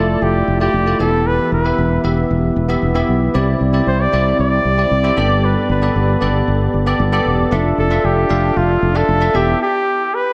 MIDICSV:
0, 0, Header, 1, 4, 480
1, 0, Start_track
1, 0, Tempo, 521739
1, 1157, Time_signature, 4, 2, 24, 8
1, 9504, End_track
2, 0, Start_track
2, 0, Title_t, "Flugelhorn"
2, 0, Program_c, 0, 56
2, 0, Note_on_c, 0, 69, 93
2, 208, Note_on_c, 0, 67, 90
2, 222, Note_off_c, 0, 69, 0
2, 563, Note_off_c, 0, 67, 0
2, 567, Note_on_c, 0, 67, 92
2, 897, Note_off_c, 0, 67, 0
2, 929, Note_on_c, 0, 69, 99
2, 1169, Note_on_c, 0, 71, 111
2, 1183, Note_off_c, 0, 69, 0
2, 1403, Note_off_c, 0, 71, 0
2, 1410, Note_on_c, 0, 71, 97
2, 1850, Note_off_c, 0, 71, 0
2, 3567, Note_on_c, 0, 72, 97
2, 3689, Note_on_c, 0, 74, 112
2, 3703, Note_off_c, 0, 72, 0
2, 4043, Note_off_c, 0, 74, 0
2, 4051, Note_on_c, 0, 74, 111
2, 5012, Note_on_c, 0, 71, 92
2, 5026, Note_off_c, 0, 74, 0
2, 5245, Note_off_c, 0, 71, 0
2, 5254, Note_on_c, 0, 71, 87
2, 5929, Note_off_c, 0, 71, 0
2, 7168, Note_on_c, 0, 69, 89
2, 7408, Note_on_c, 0, 67, 91
2, 7422, Note_off_c, 0, 69, 0
2, 7888, Note_on_c, 0, 65, 94
2, 7902, Note_off_c, 0, 67, 0
2, 8249, Note_on_c, 0, 69, 104
2, 8263, Note_off_c, 0, 65, 0
2, 8610, Note_on_c, 0, 67, 99
2, 8623, Note_off_c, 0, 69, 0
2, 8844, Note_off_c, 0, 67, 0
2, 8852, Note_on_c, 0, 67, 102
2, 9335, Note_on_c, 0, 71, 103
2, 9349, Note_off_c, 0, 67, 0
2, 9504, Note_off_c, 0, 71, 0
2, 9504, End_track
3, 0, Start_track
3, 0, Title_t, "Tine electric piano"
3, 0, Program_c, 1, 4
3, 0, Control_c, 1, 64, 127
3, 0, Note_on_c, 1, 57, 74
3, 0, Note_on_c, 1, 64, 70
3, 0, Note_on_c, 1, 65, 68
3, 0, Note_on_c, 1, 74, 77
3, 467, Note_off_c, 1, 57, 0
3, 469, Note_off_c, 1, 64, 0
3, 471, Note_off_c, 1, 65, 0
3, 472, Note_off_c, 1, 74, 0
3, 553, Note_on_c, 1, 57, 69
3, 556, Note_on_c, 1, 64, 65
3, 560, Note_on_c, 1, 65, 65
3, 565, Note_on_c, 1, 74, 81
3, 760, Note_off_c, 1, 57, 0
3, 761, Note_off_c, 1, 64, 0
3, 764, Note_off_c, 1, 65, 0
3, 766, Note_off_c, 1, 74, 0
3, 792, Note_on_c, 1, 57, 75
3, 796, Note_on_c, 1, 64, 68
3, 800, Note_on_c, 1, 65, 67
3, 804, Note_on_c, 1, 74, 78
3, 905, Note_off_c, 1, 64, 0
3, 913, Note_on_c, 1, 59, 80
3, 915, Note_off_c, 1, 57, 0
3, 916, Note_on_c, 1, 64, 69
3, 918, Note_on_c, 1, 52, 61
3, 919, Note_off_c, 1, 65, 0
3, 919, Note_on_c, 1, 67, 74
3, 921, Note_off_c, 1, 74, 0
3, 923, Note_on_c, 1, 76, 83
3, 928, Control_c, 1, 64, 0
3, 1085, Control_c, 1, 64, 127
3, 1427, Note_off_c, 1, 59, 0
3, 1428, Note_off_c, 1, 64, 0
3, 1430, Note_off_c, 1, 67, 0
3, 1432, Note_off_c, 1, 76, 0
3, 1513, Note_on_c, 1, 59, 72
3, 1516, Note_on_c, 1, 64, 67
3, 1521, Note_on_c, 1, 67, 69
3, 1524, Note_on_c, 1, 76, 81
3, 1601, Note_off_c, 1, 52, 0
3, 1822, Note_off_c, 1, 59, 0
3, 1824, Note_off_c, 1, 64, 0
3, 1826, Note_off_c, 1, 67, 0
3, 1827, Note_off_c, 1, 76, 0
3, 1872, Note_on_c, 1, 59, 70
3, 1876, Note_on_c, 1, 64, 66
3, 1880, Note_on_c, 1, 67, 68
3, 1883, Note_on_c, 1, 76, 81
3, 2386, Note_off_c, 1, 59, 0
3, 2388, Note_off_c, 1, 64, 0
3, 2390, Note_off_c, 1, 67, 0
3, 2392, Note_off_c, 1, 76, 0
3, 2471, Note_on_c, 1, 59, 85
3, 2474, Note_on_c, 1, 64, 80
3, 2477, Note_on_c, 1, 67, 76
3, 2482, Note_on_c, 1, 76, 94
3, 2679, Note_off_c, 1, 59, 0
3, 2680, Note_off_c, 1, 64, 0
3, 2682, Note_off_c, 1, 67, 0
3, 2684, Note_off_c, 1, 76, 0
3, 2710, Note_on_c, 1, 59, 83
3, 2713, Note_on_c, 1, 64, 78
3, 2717, Note_on_c, 1, 67, 78
3, 2720, Note_on_c, 1, 76, 96
3, 3021, Note_off_c, 1, 59, 0
3, 3022, Note_off_c, 1, 64, 0
3, 3024, Note_off_c, 1, 67, 0
3, 3026, Note_off_c, 1, 76, 0
3, 3073, Note_on_c, 1, 60, 87
3, 3076, Note_on_c, 1, 64, 79
3, 3078, Note_on_c, 1, 48, 77
3, 3079, Note_on_c, 1, 67, 83
3, 3083, Note_on_c, 1, 74, 96
3, 3087, Control_c, 1, 64, 0
3, 3264, Control_c, 1, 64, 127
3, 3382, Note_off_c, 1, 60, 0
3, 3383, Note_off_c, 1, 64, 0
3, 3385, Note_off_c, 1, 67, 0
3, 3387, Note_off_c, 1, 74, 0
3, 3431, Note_on_c, 1, 60, 69
3, 3435, Note_on_c, 1, 64, 68
3, 3438, Note_on_c, 1, 67, 67
3, 3442, Note_on_c, 1, 74, 80
3, 3741, Note_off_c, 1, 60, 0
3, 3743, Note_off_c, 1, 64, 0
3, 3745, Note_off_c, 1, 67, 0
3, 3747, Note_off_c, 1, 74, 0
3, 3761, Note_off_c, 1, 48, 0
3, 3793, Note_on_c, 1, 60, 74
3, 3797, Note_on_c, 1, 64, 70
3, 3801, Note_on_c, 1, 67, 69
3, 3804, Note_on_c, 1, 74, 85
3, 4307, Note_off_c, 1, 60, 0
3, 4309, Note_off_c, 1, 64, 0
3, 4311, Note_off_c, 1, 67, 0
3, 4312, Note_off_c, 1, 74, 0
3, 4394, Note_on_c, 1, 60, 74
3, 4398, Note_on_c, 1, 64, 66
3, 4401, Note_on_c, 1, 67, 63
3, 4406, Note_on_c, 1, 74, 75
3, 4600, Note_off_c, 1, 60, 0
3, 4602, Note_off_c, 1, 64, 0
3, 4604, Note_off_c, 1, 67, 0
3, 4606, Note_off_c, 1, 74, 0
3, 4631, Note_on_c, 1, 60, 91
3, 4635, Note_on_c, 1, 64, 82
3, 4639, Note_on_c, 1, 67, 85
3, 4643, Note_on_c, 1, 74, 99
3, 4745, Note_off_c, 1, 67, 0
3, 4752, Note_off_c, 1, 74, 0
3, 4753, Note_on_c, 1, 59, 98
3, 4754, Note_off_c, 1, 60, 0
3, 4756, Note_off_c, 1, 64, 0
3, 4756, Note_on_c, 1, 67, 87
3, 4758, Note_on_c, 1, 43, 79
3, 4760, Note_on_c, 1, 69, 87
3, 4763, Note_on_c, 1, 74, 104
3, 4769, Control_c, 1, 64, 0
3, 4928, Control_c, 1, 64, 127
3, 5267, Note_off_c, 1, 59, 0
3, 5268, Note_off_c, 1, 67, 0
3, 5270, Note_off_c, 1, 69, 0
3, 5272, Note_off_c, 1, 74, 0
3, 5351, Note_on_c, 1, 59, 75
3, 5356, Note_on_c, 1, 67, 68
3, 5359, Note_on_c, 1, 69, 69
3, 5362, Note_on_c, 1, 74, 83
3, 5441, Note_off_c, 1, 43, 0
3, 5661, Note_off_c, 1, 59, 0
3, 5664, Note_off_c, 1, 67, 0
3, 5665, Note_off_c, 1, 69, 0
3, 5667, Note_off_c, 1, 74, 0
3, 5711, Note_on_c, 1, 59, 76
3, 5715, Note_on_c, 1, 67, 66
3, 5719, Note_on_c, 1, 69, 70
3, 5723, Note_on_c, 1, 74, 86
3, 6226, Note_off_c, 1, 59, 0
3, 6228, Note_off_c, 1, 67, 0
3, 6230, Note_off_c, 1, 69, 0
3, 6232, Note_off_c, 1, 74, 0
3, 6312, Note_on_c, 1, 59, 86
3, 6316, Note_on_c, 1, 67, 82
3, 6319, Note_on_c, 1, 69, 79
3, 6323, Note_on_c, 1, 74, 95
3, 6519, Note_off_c, 1, 59, 0
3, 6521, Note_off_c, 1, 67, 0
3, 6523, Note_off_c, 1, 69, 0
3, 6525, Note_off_c, 1, 74, 0
3, 6551, Note_on_c, 1, 59, 94
3, 6555, Note_on_c, 1, 67, 85
3, 6558, Note_on_c, 1, 69, 85
3, 6562, Note_on_c, 1, 74, 97
3, 6861, Note_off_c, 1, 59, 0
3, 6863, Note_off_c, 1, 67, 0
3, 6865, Note_off_c, 1, 69, 0
3, 6867, Note_off_c, 1, 74, 0
3, 6911, Note_on_c, 1, 62, 94
3, 6915, Note_on_c, 1, 65, 77
3, 6919, Note_on_c, 1, 69, 85
3, 6923, Note_on_c, 1, 76, 98
3, 6931, Control_c, 1, 64, 0
3, 7105, Control_c, 1, 64, 127
3, 7221, Note_off_c, 1, 62, 0
3, 7223, Note_off_c, 1, 65, 0
3, 7225, Note_off_c, 1, 69, 0
3, 7227, Note_off_c, 1, 76, 0
3, 7270, Note_on_c, 1, 62, 74
3, 7274, Note_on_c, 1, 65, 71
3, 7278, Note_on_c, 1, 69, 69
3, 7282, Note_on_c, 1, 76, 87
3, 7581, Note_off_c, 1, 62, 0
3, 7583, Note_off_c, 1, 65, 0
3, 7584, Note_off_c, 1, 69, 0
3, 7587, Note_off_c, 1, 76, 0
3, 7629, Note_on_c, 1, 62, 75
3, 7633, Note_on_c, 1, 65, 67
3, 7636, Note_on_c, 1, 69, 66
3, 7640, Note_on_c, 1, 77, 86
3, 8145, Note_off_c, 1, 62, 0
3, 8147, Note_off_c, 1, 65, 0
3, 8149, Note_off_c, 1, 69, 0
3, 8150, Note_off_c, 1, 77, 0
3, 8229, Note_on_c, 1, 62, 71
3, 8233, Note_on_c, 1, 65, 69
3, 8235, Note_on_c, 1, 69, 65
3, 8239, Note_on_c, 1, 76, 83
3, 8438, Note_off_c, 1, 62, 0
3, 8440, Note_off_c, 1, 65, 0
3, 8441, Note_off_c, 1, 69, 0
3, 8443, Note_off_c, 1, 76, 0
3, 8469, Note_on_c, 1, 62, 74
3, 8473, Note_on_c, 1, 65, 68
3, 8478, Note_on_c, 1, 69, 71
3, 8482, Note_on_c, 1, 76, 86
3, 8589, Note_off_c, 1, 76, 0
3, 8589, Note_on_c, 1, 59, 79
3, 8594, Note_off_c, 1, 62, 0
3, 8594, Note_on_c, 1, 64, 69
3, 8595, Note_off_c, 1, 65, 0
3, 8596, Note_on_c, 1, 67, 74
3, 8598, Note_off_c, 1, 69, 0
3, 8600, Note_on_c, 1, 76, 90
3, 8607, Control_c, 1, 64, 0
3, 8702, Control_c, 1, 64, 127
3, 8798, Note_off_c, 1, 59, 0
3, 8800, Note_off_c, 1, 64, 0
3, 8801, Note_off_c, 1, 67, 0
3, 8803, Note_off_c, 1, 76, 0
3, 8851, Control_c, 1, 64, 0
3, 9504, End_track
4, 0, Start_track
4, 0, Title_t, "Fretless electric bass"
4, 0, Program_c, 2, 35
4, 0, Note_on_c, 2, 29, 100
4, 132, Note_off_c, 2, 29, 0
4, 200, Note_on_c, 2, 29, 102
4, 372, Note_off_c, 2, 29, 0
4, 439, Note_on_c, 2, 29, 100
4, 612, Note_off_c, 2, 29, 0
4, 679, Note_on_c, 2, 29, 101
4, 851, Note_off_c, 2, 29, 0
4, 917, Note_on_c, 2, 28, 93
4, 1263, Note_off_c, 2, 28, 0
4, 1398, Note_on_c, 2, 28, 88
4, 1571, Note_off_c, 2, 28, 0
4, 1640, Note_on_c, 2, 28, 99
4, 1812, Note_off_c, 2, 28, 0
4, 1878, Note_on_c, 2, 28, 100
4, 2051, Note_off_c, 2, 28, 0
4, 2120, Note_on_c, 2, 28, 98
4, 2292, Note_off_c, 2, 28, 0
4, 2357, Note_on_c, 2, 28, 99
4, 2530, Note_off_c, 2, 28, 0
4, 2598, Note_on_c, 2, 28, 95
4, 2771, Note_off_c, 2, 28, 0
4, 2840, Note_on_c, 2, 35, 85
4, 3012, Note_off_c, 2, 35, 0
4, 3079, Note_on_c, 2, 36, 104
4, 3251, Note_off_c, 2, 36, 0
4, 3318, Note_on_c, 2, 36, 93
4, 3490, Note_off_c, 2, 36, 0
4, 3558, Note_on_c, 2, 36, 94
4, 3731, Note_off_c, 2, 36, 0
4, 3799, Note_on_c, 2, 36, 99
4, 3971, Note_off_c, 2, 36, 0
4, 4039, Note_on_c, 2, 36, 106
4, 4211, Note_off_c, 2, 36, 0
4, 4276, Note_on_c, 2, 36, 99
4, 4450, Note_off_c, 2, 36, 0
4, 4518, Note_on_c, 2, 36, 99
4, 4691, Note_off_c, 2, 36, 0
4, 4757, Note_on_c, 2, 31, 97
4, 5103, Note_off_c, 2, 31, 0
4, 5238, Note_on_c, 2, 31, 91
4, 5411, Note_off_c, 2, 31, 0
4, 5479, Note_on_c, 2, 31, 105
4, 5651, Note_off_c, 2, 31, 0
4, 5717, Note_on_c, 2, 31, 106
4, 5890, Note_off_c, 2, 31, 0
4, 5959, Note_on_c, 2, 31, 100
4, 6131, Note_off_c, 2, 31, 0
4, 6199, Note_on_c, 2, 31, 88
4, 6371, Note_off_c, 2, 31, 0
4, 6436, Note_on_c, 2, 31, 107
4, 6609, Note_off_c, 2, 31, 0
4, 6676, Note_on_c, 2, 28, 83
4, 6849, Note_off_c, 2, 28, 0
4, 6917, Note_on_c, 2, 29, 104
4, 7090, Note_off_c, 2, 29, 0
4, 7157, Note_on_c, 2, 29, 94
4, 7330, Note_off_c, 2, 29, 0
4, 7398, Note_on_c, 2, 29, 92
4, 7571, Note_off_c, 2, 29, 0
4, 7638, Note_on_c, 2, 29, 109
4, 7811, Note_off_c, 2, 29, 0
4, 7879, Note_on_c, 2, 29, 105
4, 8052, Note_off_c, 2, 29, 0
4, 8118, Note_on_c, 2, 29, 104
4, 8290, Note_off_c, 2, 29, 0
4, 8357, Note_on_c, 2, 29, 107
4, 8530, Note_off_c, 2, 29, 0
4, 8596, Note_on_c, 2, 28, 94
4, 8769, Note_off_c, 2, 28, 0
4, 9504, End_track
0, 0, End_of_file